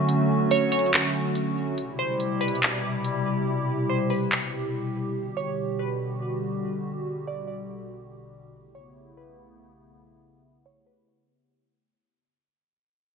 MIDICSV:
0, 0, Header, 1, 4, 480
1, 0, Start_track
1, 0, Tempo, 422535
1, 98, Time_signature, 4, 2, 24, 8
1, 14936, End_track
2, 0, Start_track
2, 0, Title_t, "Synth pluck"
2, 0, Program_c, 0, 84
2, 582, Note_on_c, 0, 73, 85
2, 802, Note_off_c, 0, 73, 0
2, 816, Note_on_c, 0, 73, 76
2, 1972, Note_off_c, 0, 73, 0
2, 2259, Note_on_c, 0, 72, 81
2, 2710, Note_off_c, 0, 72, 0
2, 2734, Note_on_c, 0, 71, 78
2, 2964, Note_off_c, 0, 71, 0
2, 4425, Note_on_c, 0, 72, 79
2, 4650, Note_off_c, 0, 72, 0
2, 4659, Note_on_c, 0, 71, 70
2, 4887, Note_off_c, 0, 71, 0
2, 6098, Note_on_c, 0, 73, 87
2, 6549, Note_off_c, 0, 73, 0
2, 6581, Note_on_c, 0, 71, 78
2, 6807, Note_off_c, 0, 71, 0
2, 8264, Note_on_c, 0, 74, 87
2, 8478, Note_off_c, 0, 74, 0
2, 8492, Note_on_c, 0, 74, 80
2, 9649, Note_off_c, 0, 74, 0
2, 9938, Note_on_c, 0, 73, 80
2, 10390, Note_off_c, 0, 73, 0
2, 10421, Note_on_c, 0, 71, 80
2, 10648, Note_off_c, 0, 71, 0
2, 12106, Note_on_c, 0, 73, 78
2, 12330, Note_off_c, 0, 73, 0
2, 12343, Note_on_c, 0, 71, 68
2, 12568, Note_off_c, 0, 71, 0
2, 14936, End_track
3, 0, Start_track
3, 0, Title_t, "Analog synth pad"
3, 0, Program_c, 1, 89
3, 0, Note_on_c, 1, 50, 83
3, 0, Note_on_c, 1, 54, 79
3, 0, Note_on_c, 1, 57, 74
3, 0, Note_on_c, 1, 61, 75
3, 0, Note_on_c, 1, 66, 91
3, 1980, Note_off_c, 1, 50, 0
3, 1980, Note_off_c, 1, 54, 0
3, 1980, Note_off_c, 1, 61, 0
3, 1980, Note_off_c, 1, 66, 0
3, 1981, Note_off_c, 1, 57, 0
3, 2022, Note_on_c, 1, 55, 77
3, 2023, Note_on_c, 1, 48, 87
3, 2023, Note_on_c, 1, 67, 90
3, 2024, Note_on_c, 1, 47, 73
3, 2024, Note_on_c, 1, 64, 77
3, 5822, Note_off_c, 1, 48, 0
3, 5822, Note_off_c, 1, 55, 0
3, 5823, Note_off_c, 1, 64, 0
3, 5859, Note_on_c, 1, 50, 83
3, 5859, Note_on_c, 1, 55, 77
3, 5859, Note_on_c, 1, 66, 79
3, 9655, Note_off_c, 1, 47, 0
3, 9660, Note_off_c, 1, 50, 0
3, 9660, Note_off_c, 1, 55, 0
3, 9660, Note_off_c, 1, 66, 0
3, 9696, Note_on_c, 1, 64, 74
3, 9697, Note_on_c, 1, 49, 81
3, 9697, Note_on_c, 1, 57, 76
3, 9697, Note_on_c, 1, 59, 78
3, 13495, Note_off_c, 1, 67, 0
3, 13499, Note_off_c, 1, 49, 0
3, 13499, Note_off_c, 1, 57, 0
3, 13499, Note_off_c, 1, 59, 0
3, 13499, Note_off_c, 1, 64, 0
3, 14936, End_track
4, 0, Start_track
4, 0, Title_t, "Drums"
4, 99, Note_on_c, 9, 42, 70
4, 213, Note_off_c, 9, 42, 0
4, 578, Note_on_c, 9, 42, 59
4, 692, Note_off_c, 9, 42, 0
4, 816, Note_on_c, 9, 46, 51
4, 817, Note_on_c, 9, 42, 69
4, 898, Note_off_c, 9, 42, 0
4, 898, Note_on_c, 9, 42, 54
4, 930, Note_off_c, 9, 46, 0
4, 979, Note_off_c, 9, 42, 0
4, 979, Note_on_c, 9, 42, 39
4, 1058, Note_off_c, 9, 42, 0
4, 1058, Note_on_c, 9, 42, 72
4, 1067, Note_on_c, 9, 39, 121
4, 1171, Note_off_c, 9, 42, 0
4, 1181, Note_off_c, 9, 39, 0
4, 1538, Note_on_c, 9, 42, 75
4, 1652, Note_off_c, 9, 42, 0
4, 2020, Note_on_c, 9, 42, 70
4, 2134, Note_off_c, 9, 42, 0
4, 2499, Note_on_c, 9, 42, 58
4, 2612, Note_off_c, 9, 42, 0
4, 2738, Note_on_c, 9, 42, 68
4, 2819, Note_off_c, 9, 42, 0
4, 2819, Note_on_c, 9, 42, 52
4, 2900, Note_off_c, 9, 42, 0
4, 2900, Note_on_c, 9, 42, 41
4, 2980, Note_off_c, 9, 42, 0
4, 2980, Note_on_c, 9, 42, 71
4, 2989, Note_on_c, 9, 39, 120
4, 3093, Note_off_c, 9, 42, 0
4, 3103, Note_off_c, 9, 39, 0
4, 3459, Note_on_c, 9, 42, 72
4, 3573, Note_off_c, 9, 42, 0
4, 4658, Note_on_c, 9, 46, 54
4, 4772, Note_off_c, 9, 46, 0
4, 4909, Note_on_c, 9, 39, 125
4, 5022, Note_off_c, 9, 39, 0
4, 14936, End_track
0, 0, End_of_file